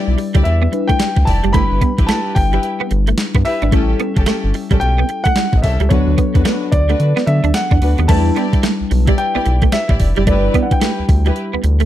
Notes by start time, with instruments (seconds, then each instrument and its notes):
Already playing: fm electric piano G3 D4 E4 B4, grand piano D5
0.08 analog synth bass B1
0.18 muted clean electric guitar stroke, open hi-hat
0.34 analog synth bass D2, clean electric guitar G3, string section E4 G4 D5, kick, closed hi-hat
0.43 analog synth bass E2, grand piano E5, closed hi-hat
0.62 clean electric guitar B3
0.72 fm electric piano G3 D4 E4 B4, muted clean electric guitar stroke, closed hi-hat
0.88 clean electric guitar A3, grand piano G5, kick, closed hi-hat
0.99 clean electric guitar G3, snare, closed hi-hat
1.16 analog synth bass D2, muted clean electric guitar stroke, kick
1.25 analog synth bass F1, string section E4 G4 D5, grand piano A5, kick, open hi-hat
1.44 analog synth bass F#1, clean electric guitar G3, closed hi-hat
1.53 analog synth bass G1, fm electric piano G3 D4 E4 B4, clean electric guitar A3, string section E4 G4 B4, grand piano B5, kick, closed hi-hat
1.72 analog synth bass G1
1.81 clean electric guitar B3, kick, closed hi-hat
1.98 analog synth bass A1, string section E4 G4 B4, muted clean electric guitar stroke, kick, closed hi-hat
2.07 clean electric guitar A3, string section E4 G4 B4, grand piano A5, snare, closed hi-hat
2.35 analog synth bass G1, grand piano G5, muted clean electric guitar stroke, kick, open hi-hat
2.52 clean electric guitar G3, string section E4 G4 B4, closed hi-hat
2.63 closed hi-hat
2.80 clean electric guitar B3
2.91 analog synth bass G1, muted clean electric guitar stroke, closed hi-hat
3.07 clean electric guitar A3, closed hi-hat
3.18 snare, closed hi-hat
3.35 analog synth bass G2, clean electric guitar B3, kick
3.45 string section E4 G4 B4, grand piano E5, muted clean electric guitar stroke, open hi-hat
3.62 analog synth bass G#1, clean electric guitar D4, closed hi-hat
3.71 analog synth bass A1, fm electric piano G3 C#4 E4 A4, clean electric guitar A3, string section C#4 G4 A4, kick, closed hi-hat
4.00 clean electric guitar B3, closed hi-hat
4.16 analog synth bass G1, string section C#4 G4 A4, muted clean electric guitar stroke, kick, closed hi-hat
4.26 clean electric guitar A3, string section C#4 G4 A4, snare, closed hi-hat
4.44 analog synth bass G1
4.54 muted clean electric guitar stroke, open hi-hat
4.71 analog synth bass A1, clean electric guitar G3, string section C#4 G4 A4, kick, closed hi-hat
4.80 analog synth bass B1, grand piano G5, closed hi-hat
4.98 clean electric guitar B3
5.09 muted clean electric guitar stroke, closed hi-hat
5.24 clean electric guitar A3, grand piano F#5, kick, closed hi-hat
5.36 clean electric guitar G3, snare, closed hi-hat
5.53 analog synth bass A1, muted clean electric guitar stroke, kick
5.57 grand piano D#5
5.62 analog synth bass C2, string section C#4 G4 A4, grand piano E5, kick, open hi-hat
5.80 analog synth bass C#2, clean electric guitar G3, closed hi-hat
5.89 analog synth bass D2, fm electric piano F#3 B3 D4 A4, clean electric guitar A3, string section D4 F#4 B4, grand piano C#5, kick, closed hi-hat
6.07 analog synth bass D2
6.18 clean electric guitar B3, kick, closed hi-hat
6.34 analog synth bass E2, string section D4 F#4 B4, muted clean electric guitar stroke, kick, closed hi-hat
6.45 clean electric guitar A3, string section D4 F#4 B4, snare, closed hi-hat
6.72 analog synth bass D2, grand piano D5, muted clean electric guitar stroke, kick, closed hi-hat
6.89 clean electric guitar A3, string section D4 F#4 B4, closed hi-hat
7.00 analog synth bass D3, closed hi-hat
7.16 clean electric guitar B3, snare
7.27 analog synth bass D3, fm electric piano F#3 B3 D4 A4, grand piano E5, muted clean electric guitar stroke, closed hi-hat
7.44 analog synth bass D2, clean electric guitar D4, closed hi-hat
7.54 grand piano F#5, snare, closed hi-hat
7.71 analog synth bass E2, clean electric guitar D4, kick
7.81 analog synth bass D2, string section D4 F#4 B4, muted clean electric guitar stroke, open hi-hat
7.98 analog synth bass D#2, clean electric guitar B3, closed hi-hat
8.08 analog synth bass E2, fm electric piano G3 D4 E4 B4, clean electric guitar A3, string section E4 G4 D5, grand piano A5, kick, closed hi-hat, crash
8.36 clean electric guitar B3, string section E4 G4 D5, closed hi-hat
8.53 analog synth bass B1, muted clean electric guitar stroke, kick, closed hi-hat
8.63 clean electric guitar A3, snare, closed hi-hat
8.81 analog synth bass B1
8.91 analog synth bass B1, muted clean electric guitar stroke, open hi-hat
9.07 clean electric guitar G3, string section E4 G4 D5, kick, closed hi-hat
9.18 grand piano G5, closed hi-hat
9.35 analog synth bass B1, clean electric guitar B3, string section E4 G4 D5
9.45 analog synth bass B1, muted clean electric guitar stroke, closed hi-hat
9.62 clean electric guitar A3, kick, closed hi-hat
9.72 clean electric guitar G3, grand piano E5, snare, closed hi-hat
9.89 analog synth bass A1, string section E4 G4 D5, muted clean electric guitar stroke, kick
10.00 analog synth bass F1, kick, open hi-hat
10.16 analog synth bass F#1, clean electric guitar G3, string section E4 G4 D5, closed hi-hat
10.26 analog synth bass G1, fm electric piano G3 D4 E4 B4, clean electric guitar A3, string section E4 G4 B4, grand piano D5, kick, closed hi-hat
10.54 clean electric guitar B3, kick, closed hi-hat
10.63 grand piano F#5
10.71 analog synth bass D2, grand piano G5, muted clean electric guitar stroke, kick, closed hi-hat
10.81 clean electric guitar A3, string section E4 G4 B4, snare, closed hi-hat
10.99 analog synth bass D2
11.09 analog synth bass D2, muted clean electric guitar stroke, kick, open hi-hat
11.25 clean electric guitar G3, string section E4 G4 B4, closed hi-hat
11.36 closed hi-hat
11.54 analog synth bass D2, clean electric guitar B3
11.63 analog synth bass D2, muted clean electric guitar stroke, closed hi-hat
11.80 clean electric guitar A3, closed hi-hat